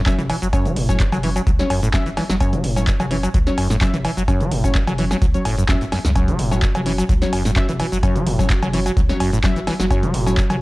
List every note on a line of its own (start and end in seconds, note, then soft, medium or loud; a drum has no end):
0.00 0.11 F#1 medium
0.06 0.10 F#2 medium
0.06 0.14 F#3 loud
0.06 0.14 C#4 medium
0.06 0.14 E5 loud
0.06 kick loud
0.06 clap loud
0.06 closed hi-hat medium
0.06 cowbell soft
0.06 cabasa medium
0.19 0.32 F#1 loud
0.19 0.22 E3 medium
0.19 closed hi-hat soft
0.19 mid tom medium
0.19 cabasa soft
0.30 0.36 E3 medium
0.30 open hi-hat medium
0.30 cowbell medium
0.42 0.70 F#1 medium
0.42 0.48 F#3 medium
0.42 closed hi-hat soft
0.42 cabasa medium
0.53 0.67 F#2 medium
0.53 0.66 F#3 medium
0.53 0.66 C#4 medium
0.53 0.66 C#5 medium
0.53 kick loud
0.53 closed hi-hat medium
0.53 cowbell medium
0.53 cabasa medium
0.65 0.78 F#3 loud
0.65 closed hi-hat soft
0.65 mid tom medium
0.65 cabasa soft
0.76 1.05 F#1 loud
0.76 1.01 A2 loud
0.76 mid tom medium
0.76 open hi-hat loud
0.89 0.96 F#3 medium
0.89 0.96 C#4 medium
0.89 0.96 C#5 loud
0.89 kick medium
0.89 snare soft
0.89 closed hi-hat soft
0.89 cowbell soft
0.89 cabasa medium
1.00 1.04 F#2 loud
1.00 kick loud
1.00 clap loud
1.00 closed hi-hat medium
1.00 cabasa medium
1.12 1.40 F#1 medium
1.12 1.18 F#3 medium
1.12 closed hi-hat medium
1.12 mid tom medium
1.12 cowbell medium
1.12 cabasa soft
1.23 1.30 E3 medium
1.23 1.37 F#3 medium
1.23 1.37 C#4 medium
1.23 1.37 C#5 medium
1.23 open hi-hat medium
1.36 1.42 F#3 medium
1.36 closed hi-hat medium
1.36 cowbell soft
1.36 cabasa medium
1.47 1.62 C#2 medium
1.47 1.51 F#3 medium
1.47 kick loud
1.47 closed hi-hat medium
1.47 cabasa medium
1.59 1.71 F#3 loud
1.59 1.71 C#4 medium
1.59 1.71 C#5 loud
1.59 snare medium
1.59 closed hi-hat soft
1.59 cabasa soft
1.70 1.98 F#1 medium
1.70 1.80 F#2 medium
1.70 open hi-hat loud
1.70 cowbell medium
1.83 1.89 A2 medium
1.83 closed hi-hat soft
1.83 cabasa medium
1.94 1.98 F#2 medium
1.94 2.02 F#3 loud
1.94 2.02 C#4 medium
1.94 2.02 E5 loud
1.94 kick loud
1.94 snare medium
1.94 clap loud
1.94 closed hi-hat medium
1.94 cowbell soft
1.94 cabasa medium
2.06 2.20 F#1 loud
2.06 2.10 E3 medium
2.06 closed hi-hat soft
2.06 cabasa soft
2.17 2.24 E3 medium
2.17 snare medium
2.17 open hi-hat medium
2.17 cowbell medium
2.30 2.57 F#1 medium
2.30 2.36 F#3 medium
2.30 snare medium
2.30 closed hi-hat soft
2.30 cabasa medium
2.40 2.54 F#2 medium
2.40 2.54 F#3 medium
2.40 2.54 C#4 medium
2.40 2.54 C#5 medium
2.40 kick loud
2.40 closed hi-hat medium
2.40 cowbell medium
2.40 cabasa medium
2.53 2.65 F#3 loud
2.53 closed hi-hat soft
2.53 mid tom medium
2.53 cabasa soft
2.64 2.92 F#1 loud
2.64 2.89 A2 loud
2.64 mid tom medium
2.64 open hi-hat loud
2.76 2.84 F#3 loud
2.76 2.84 C#4 medium
2.76 2.84 C#5 loud
2.76 snare soft
2.76 closed hi-hat soft
2.76 cowbell soft
2.76 cabasa medium
2.87 2.91 F#2 loud
2.87 kick loud
2.87 clap loud
2.87 closed hi-hat medium
2.87 cabasa medium
3.00 3.27 F#1 medium
3.00 3.06 F#3 medium
3.00 closed hi-hat medium
3.00 mid tom medium
3.00 cowbell medium
3.00 cabasa soft
3.11 3.18 E3 medium
3.11 3.24 F#3 medium
3.11 3.24 C#4 medium
3.11 3.24 C#5 medium
3.11 open hi-hat medium
3.23 3.29 F#3 medium
3.23 closed hi-hat medium
3.23 cowbell soft
3.23 cabasa medium
3.34 3.49 C#2 medium
3.34 3.38 F#3 medium
3.34 kick loud
3.34 closed hi-hat medium
3.34 cabasa medium
3.47 3.58 F#3 loud
3.47 3.59 C#4 medium
3.47 3.58 C#5 loud
3.47 snare medium
3.47 closed hi-hat soft
3.47 cabasa soft
3.58 3.86 F#1 medium
3.58 3.68 F#2 medium
3.58 open hi-hat loud
3.58 cowbell medium
3.70 3.76 A2 medium
3.70 snare medium
3.70 closed hi-hat soft
3.70 cabasa medium
3.81 3.85 F#2 medium
3.81 3.89 F#3 loud
3.81 3.89 C#4 medium
3.81 3.89 E5 loud
3.81 kick loud
3.81 clap loud
3.81 closed hi-hat medium
3.81 cowbell soft
3.81 cabasa medium
3.94 4.07 F#1 loud
3.94 3.97 E3 medium
3.94 closed hi-hat soft
3.94 mid tom medium
3.94 cabasa soft
4.04 4.11 E3 medium
4.04 open hi-hat medium
4.04 cowbell medium
4.17 4.45 F#1 medium
4.17 4.23 F#3 medium
4.17 closed hi-hat soft
4.17 cabasa medium
4.28 4.42 F#2 medium
4.28 4.41 F#3 medium
4.28 4.41 C#4 medium
4.28 4.41 C#5 medium
4.28 kick loud
4.28 closed hi-hat medium
4.28 cowbell medium
4.28 cabasa medium
4.41 4.53 F#3 loud
4.41 closed hi-hat soft
4.41 mid tom medium
4.41 cabasa soft
4.51 4.79 F#1 loud
4.51 4.76 A2 loud
4.51 mid tom medium
4.51 open hi-hat loud
4.64 4.71 F#3 medium
4.64 4.71 C#4 medium
4.64 4.71 C#5 loud
4.64 kick medium
4.64 snare soft
4.64 closed hi-hat soft
4.64 cowbell soft
4.64 cabasa medium
4.75 4.79 F#2 loud
4.75 kick loud
4.75 clap loud
4.75 closed hi-hat medium
4.75 cabasa medium
4.87 5.15 F#1 medium
4.87 4.93 F#3 medium
4.87 closed hi-hat medium
4.87 mid tom loud
4.87 cowbell medium
4.87 cabasa soft
4.98 5.05 E3 medium
4.98 5.12 F#3 medium
4.98 5.12 C#4 medium
4.98 5.12 C#5 medium
4.98 open hi-hat medium
5.11 5.17 F#3 medium
5.11 snare medium
5.11 closed hi-hat medium
5.11 cowbell soft
5.11 cabasa medium
5.22 5.37 C#2 medium
5.22 5.26 F#3 medium
5.22 kick loud
5.22 closed hi-hat medium
5.22 cabasa medium
5.34 5.46 F#3 loud
5.34 5.46 C#4 medium
5.34 5.46 C#5 loud
5.34 closed hi-hat soft
5.34 cabasa soft
5.45 5.73 F#1 medium
5.45 5.56 A2 medium
5.45 open hi-hat loud
5.45 cowbell medium
5.58 5.64 F#2 loud
5.58 closed hi-hat soft
5.58 cabasa medium
5.69 5.76 E2 loud
5.69 5.77 F#3 loud
5.69 5.77 C#4 medium
5.69 5.77 E5 loud
5.69 kick loud
5.69 snare medium
5.69 clap loud
5.69 closed hi-hat medium
5.69 cowbell soft
5.69 cabasa medium
5.81 5.95 F#1 medium
5.81 5.85 A2 medium
5.81 closed hi-hat soft
5.81 cabasa soft
5.92 5.99 F#2 medium
5.92 snare medium
5.92 open hi-hat medium
5.92 cowbell medium
6.05 6.32 C#2 medium
6.05 6.11 F#2 medium
6.05 snare medium
6.05 closed hi-hat soft
6.05 cabasa medium
6.16 6.30 F#2 medium
6.16 6.29 F#3 medium
6.16 6.29 C#4 medium
6.16 10.62 F#4 medium
6.16 6.29 C#5 medium
6.16 kick loud
6.16 closed hi-hat medium
6.16 cowbell medium
6.16 cabasa medium
6.28 6.40 F#3 loud
6.28 closed hi-hat soft
6.28 mid tom medium
6.28 cabasa soft
6.39 6.67 F#1 loud
6.39 6.64 A2 loud
6.39 mid tom loud
6.39 open hi-hat loud
6.51 6.59 F#3 medium
6.51 6.59 C#4 medium
6.51 6.59 C#5 loud
6.51 snare soft
6.51 closed hi-hat soft
6.51 cowbell soft
6.51 cabasa medium
6.62 6.67 F#2 loud
6.62 kick loud
6.62 clap loud
6.62 closed hi-hat medium
6.62 cabasa medium
6.75 7.02 F#1 medium
6.75 6.81 F#3 medium
6.75 closed hi-hat medium
6.75 mid tom loud
6.75 cowbell medium
6.75 cabasa soft
6.86 6.93 E3 medium
6.86 6.99 F#3 medium
6.86 6.99 C#4 medium
6.86 6.99 C#5 medium
6.86 open hi-hat medium
6.98 7.04 F#3 medium
6.98 closed hi-hat medium
6.98 cowbell soft
6.98 cabasa medium
7.09 7.24 C#2 medium
7.09 7.13 F#3 medium
7.09 kick loud
7.09 closed hi-hat medium
7.09 cabasa medium
7.22 7.33 F#3 loud
7.22 7.33 C#4 medium
7.22 7.33 C#5 loud
7.22 snare medium
7.22 closed hi-hat soft
7.22 cabasa soft
7.33 7.61 F#1 loud
7.33 7.43 F#2 medium
7.33 open hi-hat loud
7.33 cowbell medium
7.45 7.51 A2 loud
7.45 snare medium
7.45 closed hi-hat soft
7.45 cabasa medium
7.56 7.60 F#2 medium
7.56 7.64 F#3 loud
7.56 7.64 C#4 medium
7.56 7.64 E5 loud
7.56 kick loud
7.56 clap loud
7.56 closed hi-hat medium
7.56 cowbell soft
7.56 cabasa medium
7.69 7.82 F#1 loud
7.69 7.72 E3 medium
7.69 closed hi-hat soft
7.69 mid tom medium
7.69 cabasa soft
7.80 7.87 E3 medium
7.80 open hi-hat medium
7.80 cowbell medium
7.92 8.20 F#1 medium
7.92 7.98 F#3 medium
7.92 closed hi-hat soft
7.92 cabasa medium
8.03 8.17 F#2 medium
8.03 8.16 F#3 medium
8.03 8.16 C#4 medium
8.03 8.16 C#5 medium
8.03 kick loud
8.03 closed hi-hat medium
8.03 cowbell medium
8.03 cabasa medium
8.16 8.28 F#3 loud
8.16 closed hi-hat soft
8.16 mid tom medium
8.16 cabasa soft
8.26 8.55 F#1 loud
8.26 8.51 A2 loud
8.26 mid tom medium
8.26 open hi-hat loud
8.39 8.46 F#3 loud
8.39 8.46 C#4 medium
8.39 8.46 C#5 loud
8.39 kick medium
8.39 snare soft
8.39 closed hi-hat soft
8.39 cowbell soft
8.39 cabasa medium
8.50 8.54 F#2 loud
8.50 kick loud
8.50 clap loud
8.50 closed hi-hat medium
8.50 cabasa medium
8.62 8.90 F#1 medium
8.62 8.68 F#3 medium
8.62 closed hi-hat medium
8.62 mid tom loud
8.62 cowbell medium
8.62 cabasa soft
8.73 8.80 E3 medium
8.73 8.87 F#3 medium
8.73 8.87 C#4 medium
8.73 8.87 C#5 medium
8.73 open hi-hat loud
8.86 8.92 F#3 medium
8.86 closed hi-hat medium
8.86 cowbell soft
8.86 cabasa medium
8.97 9.12 C#2 medium
8.97 9.01 F#3 medium
8.97 kick loud
8.97 closed hi-hat medium
8.97 cabasa soft
9.09 9.21 F#3 loud
9.09 9.21 C#4 medium
9.09 9.21 C#5 loud
9.09 snare medium
9.09 closed hi-hat soft
9.09 cabasa soft
9.20 9.48 F#1 loud
9.20 9.31 F#2 medium
9.20 open hi-hat loud
9.20 cowbell medium
9.33 9.39 A2 loud
9.33 closed hi-hat soft
9.33 cabasa medium
9.44 9.48 F#2 medium
9.44 9.52 F#3 loud
9.44 9.52 C#4 medium
9.44 9.52 E5 loud
9.44 kick loud
9.44 snare medium
9.44 clap loud
9.44 closed hi-hat medium
9.44 cowbell soft
9.44 cabasa medium
9.56 9.70 F#1 loud
9.56 9.60 E3 medium
9.56 closed hi-hat soft
9.56 cabasa soft
9.67 9.74 E3 medium
9.67 snare medium
9.67 open hi-hat loud
9.67 cowbell medium
9.80 10.07 F#1 medium
9.80 9.86 F#3 medium
9.80 snare medium
9.80 closed hi-hat soft
9.80 cabasa medium
9.90 10.05 F#2 medium
9.90 10.04 F#3 medium
9.90 10.04 C#4 medium
9.90 10.04 C#5 medium
9.90 kick loud
9.90 closed hi-hat medium
9.90 cowbell medium
9.90 cabasa medium
10.03 10.15 F#3 loud
10.03 closed hi-hat soft
10.03 mid tom loud
10.03 cabasa soft
10.14 10.42 F#1 loud
10.14 10.39 A2 loud
10.14 mid tom loud
10.14 open hi-hat loud
10.26 10.34 F#3 loud
10.26 10.34 C#4 medium
10.26 10.34 C#5 loud
10.26 snare soft
10.26 cowbell soft
10.26 cabasa medium
10.37 10.42 F#2 loud
10.37 kick loud
10.37 clap loud
10.37 closed hi-hat medium
10.37 cabasa medium
10.50 10.62 F#1 medium
10.50 10.56 F#3 medium
10.50 closed hi-hat medium
10.50 mid tom loud
10.50 cowbell medium
10.50 cabasa soft